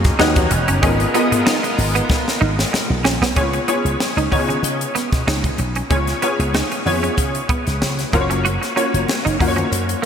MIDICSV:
0, 0, Header, 1, 7, 480
1, 0, Start_track
1, 0, Tempo, 634921
1, 629, Time_signature, 4, 2, 24, 8
1, 7602, End_track
2, 0, Start_track
2, 0, Title_t, "Grand piano"
2, 0, Program_c, 0, 0
2, 0, Control_c, 0, 64, 127
2, 0, Note_on_c, 0, 61, 86
2, 0, Note_on_c, 0, 65, 81
2, 0, Note_on_c, 0, 66, 77
2, 0, Note_on_c, 0, 68, 81
2, 0, Note_on_c, 0, 75, 96
2, 141, Note_off_c, 0, 61, 0
2, 141, Note_on_c, 0, 61, 86
2, 144, Note_off_c, 0, 66, 0
2, 144, Note_on_c, 0, 66, 85
2, 148, Note_on_c, 0, 67, 73
2, 150, Note_on_c, 0, 71, 75
2, 152, Note_off_c, 0, 75, 0
2, 152, Note_on_c, 0, 75, 100
2, 161, Control_c, 0, 64, 0
2, 162, Note_off_c, 0, 65, 0
2, 165, Note_off_c, 0, 68, 0
2, 298, Control_c, 0, 64, 127
2, 575, Note_off_c, 0, 61, 0
2, 576, Note_off_c, 0, 66, 0
2, 578, Note_off_c, 0, 67, 0
2, 579, Note_off_c, 0, 71, 0
2, 580, Note_off_c, 0, 75, 0
2, 619, Note_on_c, 0, 59, 84
2, 622, Note_on_c, 0, 65, 77
2, 625, Note_on_c, 0, 68, 82
2, 626, Note_on_c, 0, 70, 73
2, 629, Note_on_c, 0, 75, 95
2, 640, Control_c, 0, 64, 0
2, 756, Control_c, 0, 64, 127
2, 839, Note_off_c, 0, 59, 0
2, 840, Note_off_c, 0, 65, 0
2, 842, Note_off_c, 0, 68, 0
2, 842, Note_off_c, 0, 70, 0
2, 844, Note_off_c, 0, 75, 0
2, 862, Note_on_c, 0, 59, 89
2, 864, Note_on_c, 0, 65, 75
2, 865, Note_on_c, 0, 68, 80
2, 868, Note_on_c, 0, 70, 75
2, 871, Note_on_c, 0, 75, 99
2, 1724, Note_off_c, 0, 59, 0
2, 1725, Note_off_c, 0, 65, 0
2, 1726, Note_off_c, 0, 68, 0
2, 1728, Note_off_c, 0, 70, 0
2, 1729, Note_off_c, 0, 75, 0
2, 2540, Note_on_c, 0, 59, 73
2, 2545, Note_on_c, 0, 61, 69
2, 2547, Note_on_c, 0, 65, 65
2, 2548, Note_on_c, 0, 68, 68
2, 2551, Note_on_c, 0, 73, 87
2, 2554, Control_c, 0, 64, 0
2, 2696, Control_c, 0, 64, 127
2, 2757, Note_off_c, 0, 59, 0
2, 2760, Note_off_c, 0, 61, 0
2, 2761, Note_off_c, 0, 65, 0
2, 2762, Note_off_c, 0, 68, 0
2, 2763, Note_off_c, 0, 73, 0
2, 2782, Note_on_c, 0, 59, 73
2, 2782, Note_on_c, 0, 61, 73
2, 2783, Note_on_c, 0, 65, 68
2, 2787, Note_on_c, 0, 68, 73
2, 2789, Note_on_c, 0, 73, 86
2, 3214, Note_off_c, 0, 59, 0
2, 3214, Note_off_c, 0, 61, 0
2, 3214, Note_off_c, 0, 65, 0
2, 3216, Note_off_c, 0, 68, 0
2, 3217, Note_off_c, 0, 73, 0
2, 3262, Note_on_c, 0, 59, 74
2, 3262, Note_on_c, 0, 61, 71
2, 3265, Note_on_c, 0, 63, 59
2, 3268, Note_on_c, 0, 73, 90
2, 3269, Note_on_c, 0, 68, 70
2, 3313, Note_on_c, 0, 65, 66
2, 3318, Note_off_c, 0, 63, 0
2, 4125, Note_off_c, 0, 59, 0
2, 4125, Note_off_c, 0, 61, 0
2, 4128, Note_off_c, 0, 73, 0
2, 4129, Note_off_c, 0, 68, 0
2, 4151, Note_off_c, 0, 65, 0
2, 4459, Note_on_c, 0, 59, 70
2, 4460, Note_on_c, 0, 61, 73
2, 4464, Note_on_c, 0, 68, 67
2, 4466, Note_on_c, 0, 65, 69
2, 4471, Note_on_c, 0, 73, 85
2, 4678, Note_off_c, 0, 59, 0
2, 4678, Note_off_c, 0, 61, 0
2, 4680, Note_off_c, 0, 68, 0
2, 4681, Note_off_c, 0, 65, 0
2, 4683, Note_off_c, 0, 73, 0
2, 4702, Note_on_c, 0, 59, 82
2, 4703, Note_on_c, 0, 61, 73
2, 4707, Note_on_c, 0, 65, 69
2, 4709, Note_on_c, 0, 68, 72
2, 4712, Note_on_c, 0, 73, 92
2, 5135, Note_off_c, 0, 59, 0
2, 5135, Note_off_c, 0, 61, 0
2, 5137, Note_off_c, 0, 65, 0
2, 5138, Note_off_c, 0, 68, 0
2, 5140, Note_off_c, 0, 73, 0
2, 5182, Note_on_c, 0, 59, 84
2, 5184, Note_on_c, 0, 61, 69
2, 5184, Note_on_c, 0, 65, 65
2, 5187, Note_on_c, 0, 68, 74
2, 5190, Note_on_c, 0, 73, 92
2, 6046, Note_off_c, 0, 59, 0
2, 6047, Note_off_c, 0, 65, 0
2, 6048, Note_off_c, 0, 61, 0
2, 6049, Note_off_c, 0, 68, 0
2, 6050, Note_off_c, 0, 73, 0
2, 6144, Note_on_c, 0, 58, 88
2, 6145, Note_on_c, 0, 61, 79
2, 6150, Note_on_c, 0, 65, 82
2, 6151, Note_on_c, 0, 66, 79
2, 6153, Note_on_c, 0, 72, 80
2, 6157, Control_c, 0, 64, 0
2, 6203, Note_off_c, 0, 72, 0
2, 6203, Note_on_c, 0, 73, 87
2, 6277, Control_c, 0, 64, 127
2, 6576, Note_off_c, 0, 58, 0
2, 6577, Note_off_c, 0, 61, 0
2, 6580, Note_off_c, 0, 65, 0
2, 6580, Note_off_c, 0, 66, 0
2, 6606, Note_off_c, 0, 73, 0
2, 6620, Note_on_c, 0, 58, 80
2, 6623, Note_on_c, 0, 61, 76
2, 6626, Note_on_c, 0, 65, 75
2, 6626, Note_on_c, 0, 66, 73
2, 6630, Note_on_c, 0, 73, 88
2, 7055, Note_off_c, 0, 58, 0
2, 7057, Note_off_c, 0, 61, 0
2, 7058, Note_off_c, 0, 65, 0
2, 7058, Note_off_c, 0, 66, 0
2, 7060, Note_off_c, 0, 73, 0
2, 7107, Note_on_c, 0, 58, 76
2, 7108, Note_on_c, 0, 65, 73
2, 7109, Note_on_c, 0, 61, 68
2, 7111, Note_on_c, 0, 66, 73
2, 7114, Note_on_c, 0, 72, 66
2, 7163, Note_on_c, 0, 73, 87
2, 7164, Note_off_c, 0, 72, 0
2, 7602, Note_off_c, 0, 58, 0
2, 7602, Note_off_c, 0, 61, 0
2, 7602, Note_off_c, 0, 65, 0
2, 7602, Note_off_c, 0, 66, 0
2, 7602, Note_off_c, 0, 73, 0
2, 7602, End_track
3, 0, Start_track
3, 0, Title_t, "Analog synth pad"
3, 0, Program_c, 1, 89
3, 0, Note_on_c, 1, 51, 80
3, 0, Note_on_c, 1, 61, 76
3, 0, Note_on_c, 1, 63, 73
3, 0, Note_on_c, 1, 68, 91
3, 0, Note_on_c, 1, 77, 71
3, 133, Note_off_c, 1, 61, 0
3, 133, Note_off_c, 1, 68, 0
3, 133, Note_off_c, 1, 77, 0
3, 141, Note_on_c, 1, 55, 81
3, 142, Note_on_c, 1, 61, 68
3, 146, Note_on_c, 1, 59, 63
3, 606, Note_off_c, 1, 51, 0
3, 606, Note_off_c, 1, 63, 0
3, 615, Note_off_c, 1, 59, 0
3, 619, Note_off_c, 1, 55, 0
3, 620, Note_off_c, 1, 61, 0
3, 624, Note_on_c, 1, 59, 96
3, 626, Note_on_c, 1, 56, 85
3, 626, Note_on_c, 1, 65, 76
3, 627, Note_on_c, 1, 70, 70
3, 2523, Note_off_c, 1, 59, 0
3, 2524, Note_off_c, 1, 56, 0
3, 2524, Note_off_c, 1, 65, 0
3, 2524, Note_off_c, 1, 70, 0
3, 7602, End_track
4, 0, Start_track
4, 0, Title_t, "Clean electric guitar"
4, 0, Program_c, 2, 27
4, 143, Note_on_c, 2, 63, 82
4, 250, Note_off_c, 2, 63, 0
4, 515, Note_on_c, 2, 61, 71
4, 605, Note_off_c, 2, 61, 0
4, 626, Note_on_c, 2, 61, 88
4, 731, Note_off_c, 2, 61, 0
4, 864, Note_on_c, 2, 59, 80
4, 970, Note_off_c, 2, 59, 0
4, 1103, Note_on_c, 2, 63, 81
4, 1209, Note_off_c, 2, 63, 0
4, 1475, Note_on_c, 2, 59, 73
4, 1565, Note_off_c, 2, 59, 0
4, 1821, Note_on_c, 2, 63, 83
4, 1927, Note_off_c, 2, 63, 0
4, 2302, Note_on_c, 2, 61, 80
4, 2408, Note_off_c, 2, 61, 0
4, 2434, Note_on_c, 2, 59, 66
4, 2523, Note_off_c, 2, 59, 0
4, 2545, Note_on_c, 2, 61, 75
4, 2649, Note_off_c, 2, 61, 0
4, 2783, Note_on_c, 2, 59, 61
4, 2888, Note_off_c, 2, 59, 0
4, 3155, Note_on_c, 2, 63, 77
4, 3244, Note_off_c, 2, 63, 0
4, 3392, Note_on_c, 2, 61, 59
4, 3482, Note_off_c, 2, 61, 0
4, 3742, Note_on_c, 2, 59, 83
4, 3847, Note_off_c, 2, 59, 0
4, 3988, Note_on_c, 2, 63, 80
4, 4091, Note_off_c, 2, 63, 0
4, 4356, Note_on_c, 2, 61, 60
4, 4444, Note_off_c, 2, 61, 0
4, 4465, Note_on_c, 2, 61, 77
4, 4570, Note_off_c, 2, 61, 0
4, 4705, Note_on_c, 2, 59, 78
4, 4809, Note_off_c, 2, 59, 0
4, 4950, Note_on_c, 2, 63, 70
4, 5053, Note_off_c, 2, 63, 0
4, 5315, Note_on_c, 2, 61, 63
4, 5404, Note_off_c, 2, 61, 0
4, 5664, Note_on_c, 2, 59, 78
4, 5770, Note_off_c, 2, 59, 0
4, 6149, Note_on_c, 2, 58, 75
4, 6253, Note_off_c, 2, 58, 0
4, 6274, Note_on_c, 2, 61, 66
4, 6364, Note_off_c, 2, 61, 0
4, 6386, Note_on_c, 2, 66, 77
4, 6491, Note_off_c, 2, 66, 0
4, 6624, Note_on_c, 2, 61, 73
4, 6730, Note_off_c, 2, 61, 0
4, 6993, Note_on_c, 2, 63, 82
4, 7084, Note_off_c, 2, 63, 0
4, 7229, Note_on_c, 2, 61, 62
4, 7322, Note_off_c, 2, 61, 0
4, 7578, Note_on_c, 2, 58, 78
4, 7602, Note_off_c, 2, 58, 0
4, 7602, End_track
5, 0, Start_track
5, 0, Title_t, "Slap bass"
5, 0, Program_c, 3, 36
5, 148, Note_on_c, 3, 39, 105
5, 274, Note_off_c, 3, 39, 0
5, 274, Note_on_c, 3, 40, 103
5, 351, Note_off_c, 3, 40, 0
5, 385, Note_on_c, 3, 28, 98
5, 475, Note_off_c, 3, 28, 0
5, 514, Note_on_c, 3, 30, 101
5, 591, Note_off_c, 3, 30, 0
5, 626, Note_on_c, 3, 32, 108
5, 790, Note_off_c, 3, 32, 0
5, 997, Note_on_c, 3, 44, 97
5, 1072, Note_off_c, 3, 44, 0
5, 1347, Note_on_c, 3, 32, 94
5, 1510, Note_off_c, 3, 32, 0
5, 1823, Note_on_c, 3, 32, 97
5, 1988, Note_off_c, 3, 32, 0
5, 2193, Note_on_c, 3, 35, 91
5, 2304, Note_off_c, 3, 35, 0
5, 2304, Note_on_c, 3, 34, 93
5, 2392, Note_off_c, 3, 34, 0
5, 2429, Note_on_c, 3, 35, 86
5, 2506, Note_off_c, 3, 35, 0
5, 2543, Note_on_c, 3, 37, 96
5, 2707, Note_off_c, 3, 37, 0
5, 2909, Note_on_c, 3, 37, 86
5, 2986, Note_off_c, 3, 37, 0
5, 3150, Note_on_c, 3, 37, 88
5, 3227, Note_off_c, 3, 37, 0
5, 3269, Note_on_c, 3, 49, 93
5, 3431, Note_off_c, 3, 49, 0
5, 3498, Note_on_c, 3, 49, 101
5, 3664, Note_off_c, 3, 49, 0
5, 3872, Note_on_c, 3, 47, 77
5, 3948, Note_off_c, 3, 47, 0
5, 3986, Note_on_c, 3, 37, 77
5, 4149, Note_off_c, 3, 37, 0
5, 4227, Note_on_c, 3, 35, 79
5, 4390, Note_off_c, 3, 35, 0
5, 4464, Note_on_c, 3, 37, 101
5, 4628, Note_off_c, 3, 37, 0
5, 4833, Note_on_c, 3, 37, 90
5, 4997, Note_off_c, 3, 37, 0
5, 5188, Note_on_c, 3, 41, 86
5, 5351, Note_off_c, 3, 41, 0
5, 5424, Note_on_c, 3, 49, 99
5, 5589, Note_off_c, 3, 49, 0
5, 5800, Note_on_c, 3, 37, 76
5, 5874, Note_off_c, 3, 37, 0
5, 5913, Note_on_c, 3, 37, 81
5, 6074, Note_off_c, 3, 37, 0
5, 6149, Note_on_c, 3, 30, 90
5, 6476, Note_off_c, 3, 30, 0
5, 6758, Note_on_c, 3, 30, 87
5, 6833, Note_off_c, 3, 30, 0
5, 7000, Note_on_c, 3, 30, 82
5, 7075, Note_off_c, 3, 30, 0
5, 7109, Note_on_c, 3, 42, 86
5, 7273, Note_off_c, 3, 42, 0
5, 7346, Note_on_c, 3, 42, 96
5, 7511, Note_off_c, 3, 42, 0
5, 7602, End_track
6, 0, Start_track
6, 0, Title_t, "Muted clean electric guitar strokes"
6, 385, Note_on_c, 9, 29, 48
6, 460, Note_off_c, 9, 29, 0
6, 993, Note_on_c, 9, 29, 49
6, 1069, Note_off_c, 9, 29, 0
6, 1235, Note_on_c, 9, 29, 51
6, 1311, Note_off_c, 9, 29, 0
6, 2065, Note_on_c, 9, 29, 48
6, 2140, Note_off_c, 9, 29, 0
6, 2673, Note_on_c, 9, 29, 42
6, 2748, Note_off_c, 9, 29, 0
6, 3263, Note_on_c, 9, 29, 44
6, 3339, Note_off_c, 9, 29, 0
6, 4226, Note_on_c, 9, 29, 40
6, 4301, Note_off_c, 9, 29, 0
6, 4838, Note_on_c, 9, 29, 43
6, 4914, Note_off_c, 9, 29, 0
6, 5078, Note_on_c, 9, 29, 46
6, 5154, Note_off_c, 9, 29, 0
6, 5908, Note_on_c, 9, 29, 40
6, 5984, Note_off_c, 9, 29, 0
6, 6513, Note_on_c, 9, 29, 45
6, 6589, Note_off_c, 9, 29, 0
6, 7103, Note_on_c, 9, 29, 43
6, 7178, Note_off_c, 9, 29, 0
6, 7602, End_track
7, 0, Start_track
7, 0, Title_t, "Drums"
7, 33, Note_on_c, 9, 42, 58
7, 37, Note_on_c, 9, 36, 91
7, 38, Note_on_c, 9, 38, 39
7, 109, Note_off_c, 9, 42, 0
7, 113, Note_off_c, 9, 36, 0
7, 113, Note_off_c, 9, 38, 0
7, 148, Note_on_c, 9, 38, 105
7, 163, Note_on_c, 9, 63, 66
7, 223, Note_off_c, 9, 38, 0
7, 239, Note_off_c, 9, 63, 0
7, 272, Note_on_c, 9, 42, 56
7, 275, Note_on_c, 9, 36, 97
7, 348, Note_off_c, 9, 42, 0
7, 351, Note_off_c, 9, 36, 0
7, 384, Note_on_c, 9, 42, 68
7, 396, Note_on_c, 9, 63, 67
7, 459, Note_off_c, 9, 42, 0
7, 472, Note_off_c, 9, 63, 0
7, 514, Note_on_c, 9, 42, 51
7, 590, Note_off_c, 9, 42, 0
7, 626, Note_on_c, 9, 42, 78
7, 627, Note_on_c, 9, 36, 114
7, 634, Note_on_c, 9, 62, 51
7, 701, Note_off_c, 9, 42, 0
7, 703, Note_off_c, 9, 36, 0
7, 710, Note_off_c, 9, 62, 0
7, 755, Note_on_c, 9, 42, 48
7, 831, Note_off_c, 9, 42, 0
7, 866, Note_on_c, 9, 42, 75
7, 871, Note_on_c, 9, 62, 33
7, 941, Note_off_c, 9, 42, 0
7, 946, Note_off_c, 9, 62, 0
7, 1000, Note_on_c, 9, 42, 59
7, 1076, Note_off_c, 9, 42, 0
7, 1109, Note_on_c, 9, 38, 127
7, 1111, Note_on_c, 9, 63, 77
7, 1184, Note_off_c, 9, 38, 0
7, 1187, Note_off_c, 9, 63, 0
7, 1240, Note_on_c, 9, 42, 48
7, 1316, Note_off_c, 9, 42, 0
7, 1348, Note_on_c, 9, 64, 68
7, 1351, Note_on_c, 9, 46, 65
7, 1424, Note_off_c, 9, 64, 0
7, 1427, Note_off_c, 9, 46, 0
7, 1479, Note_on_c, 9, 42, 51
7, 1554, Note_off_c, 9, 42, 0
7, 1583, Note_on_c, 9, 62, 55
7, 1585, Note_on_c, 9, 36, 88
7, 1589, Note_on_c, 9, 38, 60
7, 1658, Note_off_c, 9, 62, 0
7, 1661, Note_off_c, 9, 36, 0
7, 1665, Note_off_c, 9, 38, 0
7, 1723, Note_on_c, 9, 38, 61
7, 1798, Note_off_c, 9, 38, 0
7, 1831, Note_on_c, 9, 62, 47
7, 1907, Note_off_c, 9, 62, 0
7, 1958, Note_on_c, 9, 38, 78
7, 2034, Note_off_c, 9, 38, 0
7, 2071, Note_on_c, 9, 38, 86
7, 2072, Note_on_c, 9, 63, 68
7, 2146, Note_off_c, 9, 38, 0
7, 2147, Note_off_c, 9, 63, 0
7, 2300, Note_on_c, 9, 63, 66
7, 2306, Note_on_c, 9, 38, 97
7, 2376, Note_off_c, 9, 63, 0
7, 2382, Note_off_c, 9, 38, 0
7, 2439, Note_on_c, 9, 38, 98
7, 2514, Note_off_c, 9, 38, 0
7, 2542, Note_on_c, 9, 42, 75
7, 2544, Note_on_c, 9, 36, 93
7, 2548, Note_on_c, 9, 62, 45
7, 2618, Note_off_c, 9, 42, 0
7, 2620, Note_off_c, 9, 36, 0
7, 2623, Note_off_c, 9, 62, 0
7, 2671, Note_on_c, 9, 42, 47
7, 2747, Note_off_c, 9, 42, 0
7, 2783, Note_on_c, 9, 42, 65
7, 2783, Note_on_c, 9, 62, 28
7, 2859, Note_off_c, 9, 42, 0
7, 2859, Note_off_c, 9, 62, 0
7, 2916, Note_on_c, 9, 42, 52
7, 2992, Note_off_c, 9, 42, 0
7, 3027, Note_on_c, 9, 38, 107
7, 3027, Note_on_c, 9, 63, 70
7, 3102, Note_off_c, 9, 63, 0
7, 3103, Note_off_c, 9, 38, 0
7, 3161, Note_on_c, 9, 42, 46
7, 3236, Note_off_c, 9, 42, 0
7, 3263, Note_on_c, 9, 64, 66
7, 3267, Note_on_c, 9, 36, 80
7, 3271, Note_on_c, 9, 46, 55
7, 3339, Note_off_c, 9, 64, 0
7, 3342, Note_off_c, 9, 36, 0
7, 3347, Note_off_c, 9, 46, 0
7, 3397, Note_on_c, 9, 64, 61
7, 3403, Note_on_c, 9, 42, 46
7, 3472, Note_off_c, 9, 64, 0
7, 3479, Note_off_c, 9, 42, 0
7, 3502, Note_on_c, 9, 62, 48
7, 3509, Note_on_c, 9, 42, 102
7, 3577, Note_off_c, 9, 62, 0
7, 3584, Note_off_c, 9, 42, 0
7, 3637, Note_on_c, 9, 42, 61
7, 3713, Note_off_c, 9, 42, 0
7, 3746, Note_on_c, 9, 42, 69
7, 3751, Note_on_c, 9, 38, 35
7, 3752, Note_on_c, 9, 62, 45
7, 3822, Note_off_c, 9, 42, 0
7, 3827, Note_off_c, 9, 38, 0
7, 3827, Note_off_c, 9, 62, 0
7, 3875, Note_on_c, 9, 36, 78
7, 3875, Note_on_c, 9, 42, 49
7, 3879, Note_on_c, 9, 38, 36
7, 3950, Note_off_c, 9, 36, 0
7, 3950, Note_off_c, 9, 42, 0
7, 3955, Note_off_c, 9, 38, 0
7, 3991, Note_on_c, 9, 38, 101
7, 3991, Note_on_c, 9, 63, 57
7, 4066, Note_off_c, 9, 38, 0
7, 4066, Note_off_c, 9, 63, 0
7, 4113, Note_on_c, 9, 36, 92
7, 4115, Note_on_c, 9, 42, 50
7, 4189, Note_off_c, 9, 36, 0
7, 4191, Note_off_c, 9, 42, 0
7, 4219, Note_on_c, 9, 63, 60
7, 4221, Note_on_c, 9, 42, 54
7, 4295, Note_off_c, 9, 63, 0
7, 4296, Note_off_c, 9, 42, 0
7, 4350, Note_on_c, 9, 42, 46
7, 4426, Note_off_c, 9, 42, 0
7, 4464, Note_on_c, 9, 42, 71
7, 4465, Note_on_c, 9, 36, 101
7, 4467, Note_on_c, 9, 62, 48
7, 4540, Note_off_c, 9, 42, 0
7, 4541, Note_off_c, 9, 36, 0
7, 4543, Note_off_c, 9, 62, 0
7, 4592, Note_on_c, 9, 42, 43
7, 4597, Note_on_c, 9, 38, 32
7, 4667, Note_off_c, 9, 42, 0
7, 4672, Note_off_c, 9, 38, 0
7, 4705, Note_on_c, 9, 42, 69
7, 4705, Note_on_c, 9, 62, 27
7, 4780, Note_off_c, 9, 42, 0
7, 4781, Note_off_c, 9, 62, 0
7, 4837, Note_on_c, 9, 42, 53
7, 4912, Note_off_c, 9, 42, 0
7, 4945, Note_on_c, 9, 63, 67
7, 4949, Note_on_c, 9, 38, 105
7, 5021, Note_off_c, 9, 63, 0
7, 5024, Note_off_c, 9, 38, 0
7, 5078, Note_on_c, 9, 42, 46
7, 5153, Note_off_c, 9, 42, 0
7, 5185, Note_on_c, 9, 64, 64
7, 5190, Note_on_c, 9, 46, 56
7, 5260, Note_off_c, 9, 64, 0
7, 5266, Note_off_c, 9, 46, 0
7, 5320, Note_on_c, 9, 42, 45
7, 5396, Note_off_c, 9, 42, 0
7, 5422, Note_on_c, 9, 62, 44
7, 5427, Note_on_c, 9, 36, 83
7, 5428, Note_on_c, 9, 42, 105
7, 5498, Note_off_c, 9, 62, 0
7, 5502, Note_off_c, 9, 36, 0
7, 5504, Note_off_c, 9, 42, 0
7, 5555, Note_on_c, 9, 42, 53
7, 5630, Note_off_c, 9, 42, 0
7, 5664, Note_on_c, 9, 36, 93
7, 5664, Note_on_c, 9, 42, 73
7, 5672, Note_on_c, 9, 62, 46
7, 5740, Note_off_c, 9, 36, 0
7, 5740, Note_off_c, 9, 42, 0
7, 5748, Note_off_c, 9, 62, 0
7, 5796, Note_on_c, 9, 42, 49
7, 5800, Note_on_c, 9, 38, 36
7, 5872, Note_off_c, 9, 42, 0
7, 5876, Note_off_c, 9, 38, 0
7, 5911, Note_on_c, 9, 38, 95
7, 5913, Note_on_c, 9, 63, 60
7, 5986, Note_off_c, 9, 38, 0
7, 5989, Note_off_c, 9, 63, 0
7, 6038, Note_on_c, 9, 42, 49
7, 6041, Note_on_c, 9, 38, 40
7, 6114, Note_off_c, 9, 42, 0
7, 6117, Note_off_c, 9, 38, 0
7, 6142, Note_on_c, 9, 63, 61
7, 6148, Note_on_c, 9, 36, 89
7, 6149, Note_on_c, 9, 42, 54
7, 6217, Note_off_c, 9, 63, 0
7, 6224, Note_off_c, 9, 36, 0
7, 6225, Note_off_c, 9, 42, 0
7, 6279, Note_on_c, 9, 42, 46
7, 6355, Note_off_c, 9, 42, 0
7, 6392, Note_on_c, 9, 42, 67
7, 6392, Note_on_c, 9, 62, 52
7, 6467, Note_off_c, 9, 42, 0
7, 6467, Note_off_c, 9, 62, 0
7, 6522, Note_on_c, 9, 42, 46
7, 6527, Note_on_c, 9, 38, 36
7, 6597, Note_off_c, 9, 42, 0
7, 6603, Note_off_c, 9, 38, 0
7, 6627, Note_on_c, 9, 62, 26
7, 6632, Note_on_c, 9, 42, 68
7, 6703, Note_off_c, 9, 62, 0
7, 6708, Note_off_c, 9, 42, 0
7, 6762, Note_on_c, 9, 42, 54
7, 6837, Note_off_c, 9, 42, 0
7, 6868, Note_on_c, 9, 63, 72
7, 6876, Note_on_c, 9, 38, 109
7, 6943, Note_off_c, 9, 63, 0
7, 6951, Note_off_c, 9, 38, 0
7, 7007, Note_on_c, 9, 42, 48
7, 7083, Note_off_c, 9, 42, 0
7, 7109, Note_on_c, 9, 64, 66
7, 7110, Note_on_c, 9, 36, 84
7, 7116, Note_on_c, 9, 46, 61
7, 7185, Note_off_c, 9, 64, 0
7, 7186, Note_off_c, 9, 36, 0
7, 7191, Note_off_c, 9, 46, 0
7, 7242, Note_on_c, 9, 64, 64
7, 7245, Note_on_c, 9, 42, 46
7, 7317, Note_off_c, 9, 64, 0
7, 7320, Note_off_c, 9, 42, 0
7, 7348, Note_on_c, 9, 62, 46
7, 7353, Note_on_c, 9, 42, 100
7, 7424, Note_off_c, 9, 62, 0
7, 7429, Note_off_c, 9, 42, 0
7, 7478, Note_on_c, 9, 42, 56
7, 7553, Note_off_c, 9, 42, 0
7, 7602, End_track
0, 0, End_of_file